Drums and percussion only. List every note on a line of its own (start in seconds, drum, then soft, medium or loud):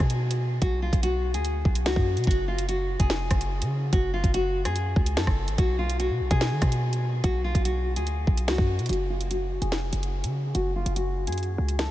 0.10 closed hi-hat loud
0.31 closed hi-hat medium
0.62 kick loud
0.62 closed hi-hat medium
0.93 kick loud
0.93 closed hi-hat medium
1.03 closed hi-hat medium
1.34 closed hi-hat medium
1.45 closed hi-hat medium
1.65 kick loud
1.75 closed hi-hat medium
1.86 snare loud
1.96 kick loud
2.17 closed hi-hat soft
2.24 kick loud
2.24 closed hi-hat medium
2.31 closed hi-hat medium
2.59 closed hi-hat medium
2.69 closed hi-hat medium
3.00 kick loud
3.00 closed hi-hat medium
3.10 snare loud
3.31 kick loud
3.31 cross-stick loud
3.31 closed hi-hat medium
3.41 closed hi-hat medium
3.62 closed hi-hat medium
3.93 kick loud
3.93 closed hi-hat medium
4.24 kick loud
4.24 closed hi-hat medium
4.34 closed hi-hat medium
4.65 cross-stick medium
4.65 closed hi-hat medium
4.76 closed hi-hat medium
4.96 kick loud
5.06 closed hi-hat loud
5.17 snare loud
5.27 kick loud
5.27 cross-stick loud
5.48 closed hi-hat medium
5.58 kick loud
5.58 closed hi-hat medium
5.90 closed hi-hat medium
6.00 closed hi-hat medium
6.31 kick loud
6.31 closed hi-hat medium
6.41 snare loud
6.62 kick loud
6.62 cross-stick medium
6.62 closed hi-hat medium
6.72 closed hi-hat medium
6.93 closed hi-hat medium
7.24 kick loud
7.24 closed hi-hat medium
7.55 kick loud
7.55 closed hi-hat medium
7.65 closed hi-hat medium
7.96 closed hi-hat medium
8.07 closed hi-hat medium
8.27 kick loud
8.37 closed hi-hat loud
8.48 snare loud
8.58 kick loud
8.79 closed hi-hat soft
8.86 closed hi-hat medium
8.89 closed hi-hat medium
8.93 closed hi-hat medium
9.21 closed hi-hat medium
9.31 closed hi-hat medium
9.62 closed hi-hat medium
9.72 snare loud
9.93 closed hi-hat medium
10.03 closed hi-hat medium
10.24 closed hi-hat medium
10.55 closed hi-hat medium
10.86 closed hi-hat medium
10.96 closed hi-hat medium
11.27 closed hi-hat medium
11.32 closed hi-hat medium
11.38 closed hi-hat soft
11.43 closed hi-hat soft
11.69 closed hi-hat medium
11.79 snare loud